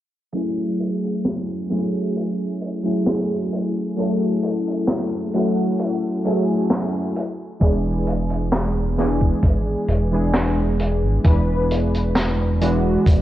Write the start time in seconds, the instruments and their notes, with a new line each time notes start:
0.32 synth keys F#3 A3 C#4 E4 G#4, closed hi-hat
0.80 closed hi-hat
1.04 closed hi-hat
1.25 snare, closed hi-hat
1.70 synth keys F#3 A3 C#4 E4 G#4, snare, closed hi-hat
2.16 closed hi-hat
2.61 closed hi-hat
2.83 synth keys F#3 A3 C#4 E4 G#4
3.07 snare, closed hi-hat
3.52 closed hi-hat
3.96 synth keys F#3 A3 C#4 E4 A4, closed hi-hat
4.43 closed hi-hat
4.67 closed hi-hat
4.87 snare, closed hi-hat
5.34 synth keys F#3 A3 C#4 E4 F#4, closed hi-hat
5.79 closed hi-hat
6.25 synth keys F#3 A3 C#4 E4 G#4, closed hi-hat
6.70 snare, closed hi-hat
7.16 closed hi-hat
7.60 analog synth bass E1, synth keys E3 G#3 B3 D4 G#4, kick, closed hi-hat
8.06 closed hi-hat
8.30 closed hi-hat
8.52 snare, closed hi-hat
8.97 synth keys E3 G#3 B3 D4 G#4, snare, closed hi-hat
9.21 kick
9.43 analog synth bass G#1, kick, closed hi-hat
9.88 analog synth bass E1, closed hi-hat
10.11 synth keys E3 G#3 B3 D4 G#4
10.34 snare, closed hi-hat
10.79 closed hi-hat
11.03 analog synth bass G#1
11.24 analog synth bass E1, synth keys E3 G#3 B3 D4 B4, kick, closed hi-hat
11.71 closed hi-hat
11.94 closed hi-hat
12.15 snare, closed hi-hat
12.61 synth keys E3 G#3 B3 D4 F#4, closed hi-hat
13.06 analog synth bass E1, kick, closed hi-hat